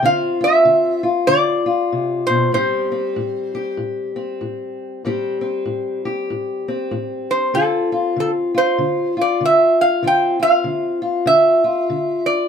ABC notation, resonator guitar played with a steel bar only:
X:1
M:4/4
L:1/8
Q:"Swing" 1/4=96
K:Ddor
V:1 name="Resonator guitar played with a steel bar"
f e2 z d3 c | c4 z4 | z6 z c | A2 A c2 d e f |
g f2 z e3 d |]